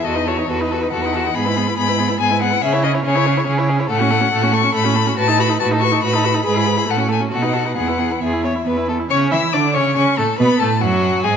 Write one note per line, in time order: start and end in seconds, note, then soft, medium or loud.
0.04 0.44 E2 soft
0.04 0.18 F#4 soft
0.04 0.16 A4 soft
0.04 0.29 D#5 medium
0.15 0.29 D#4 soft
0.15 0.27 B4 soft
0.25 0.40 F#4 soft
0.25 0.39 A4 soft
0.25 0.51 C#5 medium
0.37 0.49 D#4 soft
0.37 0.47 B4 soft
0.48 0.87 E2 soft
0.48 0.63 F#4 soft
0.48 0.60 A4 soft
0.48 0.91 B4 medium
0.59 0.74 D#4 soft
0.59 0.73 B4 soft
0.71 0.85 F#4 soft
0.71 0.82 A4 soft
0.81 0.93 D#4 soft
0.81 0.92 B4 soft
0.91 1.31 E2 soft
0.91 1.07 F#4 soft
0.91 1.03 A4 soft
0.91 1.36 F#5 medium
1.02 1.14 B4 soft
1.06 1.17 D#4 soft
1.13 1.28 F#4 soft
1.13 1.25 A4 soft
1.23 1.36 D#4 soft
1.23 1.34 B4 soft
1.34 1.73 G#2 medium
1.34 1.49 B3 soft
1.34 1.46 G#4 soft
1.34 1.77 B5 medium
1.45 1.59 E4 soft
1.45 1.57 B4 soft
1.56 1.69 B3 soft
1.56 1.69 G#4 soft
1.67 1.78 E4 soft
1.67 1.76 B4 soft
1.77 2.16 G#2 medium
1.77 1.90 B3 soft
1.77 1.89 G#4 soft
1.77 2.20 B5 medium
1.88 2.01 E4 soft
1.88 1.99 B4 soft
1.98 2.11 B3 soft
1.98 2.09 G#4 soft
2.08 2.20 E4 soft
2.08 2.18 B4 soft
2.18 2.58 G#2 medium
2.18 2.33 B3 soft
2.18 2.31 G#4 soft
2.18 2.41 G#5 medium
2.30 2.44 E4 soft
2.30 2.41 B4 soft
2.40 2.54 B3 soft
2.40 2.52 G#4 soft
2.40 2.63 F#5 medium
2.51 2.63 E4 soft
2.51 2.62 B4 soft
2.62 3.01 C#3 medium
2.62 2.75 C#4 soft
2.62 2.74 G#4 medium
2.62 2.83 E5 medium
2.73 2.85 E4 soft
2.73 2.85 C#5 soft
2.83 2.96 C#4 soft
2.83 2.96 G#4 soft
2.83 2.91 D#5 medium
2.94 3.04 E4 soft
2.94 3.04 C#5 soft
3.05 3.43 C#3 medium
3.05 3.17 C#4 soft
3.05 3.18 G#4 soft
3.05 3.47 C#5 medium
3.15 3.28 E4 soft
3.15 3.27 C#5 soft
3.26 3.39 C#4 soft
3.26 3.38 G#4 soft
3.37 3.47 E4 soft
3.37 3.46 C#5 soft
3.47 3.86 C#3 medium
3.47 3.60 C#4 soft
3.47 3.60 G#4 medium
3.58 3.71 E4 soft
3.58 3.70 C#5 soft
3.69 3.81 C#4 soft
3.69 3.81 G#4 medium
3.79 3.90 E4 soft
3.79 3.88 C#5 soft
3.89 4.28 A2 medium
3.89 4.03 A3 medium
3.89 4.01 A4 medium
3.89 4.55 F#5 medium
3.99 4.13 C#4 soft
3.99 4.12 F#4 soft
4.10 4.23 A3 soft
4.10 4.22 A4 soft
4.21 4.31 C#4 medium
4.21 4.31 F#4 soft
4.32 4.71 A2 medium
4.32 4.45 A3 medium
4.32 4.43 A4 medium
4.42 4.55 C#4 soft
4.42 4.53 F#4 soft
4.52 4.65 A3 soft
4.52 4.63 A4 soft
4.52 4.74 C#6 medium
4.61 4.74 C#4 soft
4.61 4.72 F#4 medium
4.72 5.13 A2 medium
4.72 4.87 A3 soft
4.72 4.85 A4 medium
4.72 5.17 B5 medium
4.84 4.97 C#4 soft
4.84 4.97 F#4 soft
4.95 5.08 A3 soft
4.95 5.09 A4 soft
5.06 5.16 C#4 soft
5.06 5.17 F#4 soft
5.17 5.55 A2 medium
5.17 5.30 F#4 medium
5.17 5.30 B4 medium
5.17 5.42 A5 medium
5.28 5.41 D#4 soft
5.28 5.39 A4 soft
5.38 5.51 F#4 soft
5.38 5.51 B4 medium
5.38 5.59 B5 medium
5.49 5.60 D#4 soft
5.49 5.60 A4 soft
5.60 5.98 A2 medium
5.60 5.73 F#4 soft
5.60 5.75 B4 medium
5.60 5.68 A5 medium
5.71 5.82 D#4 soft
5.71 5.85 A4 soft
5.80 5.93 F#4 soft
5.80 6.02 C#6 medium
5.84 5.94 B4 soft
5.92 6.03 D#4 soft
5.92 6.03 A4 soft
6.03 6.41 A2 medium
6.03 6.15 F#4 soft
6.03 6.17 B4 soft
6.03 6.45 B5 medium
6.14 6.26 D#4 soft
6.14 6.27 A4 soft
6.24 6.36 F#4 soft
6.24 6.36 B4 soft
6.34 6.44 D#4 soft
6.34 6.44 A4 soft
6.45 6.84 G#2 medium
6.45 6.57 G#4 soft
6.45 6.56 B4 medium
6.45 6.92 B5 medium
6.55 6.68 E4 soft
6.55 6.67 G#4 soft
6.66 6.78 G#4 soft
6.66 6.79 B4 soft
6.77 6.87 E4 soft
6.77 6.88 G#4 soft
6.88 7.28 A2 medium
6.88 6.99 A3 soft
6.88 7.01 A4 soft
6.88 7.11 F#5 medium
6.97 7.10 C#4 soft
6.97 7.10 F#4 soft
7.08 7.22 A3 soft
7.08 7.22 A4 soft
7.08 7.20 G#5 medium
7.20 7.30 C#4 soft
7.20 7.31 F#4 soft
7.31 7.72 B2 soft
7.31 7.44 F#4 soft
7.31 7.45 A4 soft
7.31 7.76 F#5 medium
7.42 7.56 D#4 soft
7.42 7.55 B4 soft
7.53 7.67 F#4 soft
7.53 7.67 A4 soft
7.65 7.76 D#4 soft
7.65 7.76 B4 soft
7.77 8.18 E2 soft
7.77 7.89 B3 soft
7.77 7.90 G#4 soft
7.77 8.22 F#5 medium
7.88 8.00 E4 soft
7.88 8.01 B4 soft
7.99 8.12 B3 soft
7.99 8.13 G#4 soft
8.10 8.21 E4 soft
8.10 8.22 B4 soft
8.20 8.62 E2 soft
8.20 8.35 B3 soft
8.20 8.44 G#4 soft
8.20 8.88 E5 soft
8.33 8.46 E4 soft
8.44 8.57 B3 soft
8.44 8.52 C#5 soft
8.55 8.65 E4 soft
8.66 9.06 E2 soft
8.66 8.79 B3 soft
8.66 8.88 B4 soft
8.77 8.90 E4 soft
8.88 9.01 B3 soft
8.88 8.97 A4 soft
8.99 9.10 E4 soft
9.10 9.31 C#3 medium
9.10 9.34 C#4 medium
9.10 9.30 C#5 medium
9.10 9.18 C#6 medium
9.31 9.40 E3 medium
9.31 9.55 E4 medium
9.31 9.39 E5 medium
9.31 9.54 E6 medium
9.53 9.78 D3 medium
9.53 9.77 D4 medium
9.53 9.61 D5 medium
9.53 9.76 D6 medium
9.73 9.97 C#3 medium
9.73 9.96 C#4 medium
9.73 9.94 C#5 medium
9.73 9.95 C#6 medium
9.95 10.05 C#3 medium
9.95 10.18 C#4 medium
9.95 10.03 C#5 medium
9.95 10.19 C#6 medium
10.18 10.26 A2 medium
10.18 10.26 A3 medium
10.18 10.38 A4 medium
10.18 10.38 A5 medium
10.38 10.48 B2 medium
10.38 10.61 B3 medium
10.38 10.58 B4 medium
10.38 10.61 B5 medium
10.59 10.85 A2 medium
10.59 10.70 A3 medium
10.59 10.81 A4 medium
10.59 10.83 A5 medium
10.81 11.25 F#2 medium
10.81 11.24 F#3 medium
10.81 11.26 F#4 medium
10.81 11.23 F#5 medium
11.23 11.37 G#2 medium
11.23 11.33 G#3 medium
11.23 11.37 G#4 medium
11.23 11.37 G#5 medium